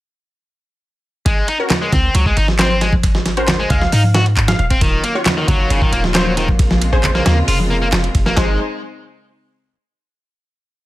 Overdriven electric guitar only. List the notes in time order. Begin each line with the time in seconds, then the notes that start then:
1.26 G#3
1.48 D#4
1.82 G#3
1.92 C4
2.14 F#3
2.26 G#3
2.37 D#4
2.59 C4
2.81 G#3
3.59 G#3
3.70 G#3
3.93 D#4
4.15 F#4
4.71 C4
4.82 D#3
5.04 A#3
5.37 D#3
5.48 F#3
5.71 C#3
5.82 D#3
5.93 A#3
6.15 F#3
6.37 D#3
7.15 A#3
7.26 A#3
7.48 F4
7.70 A#3
7.82 A#3
8.26 A#3
8.37 G#3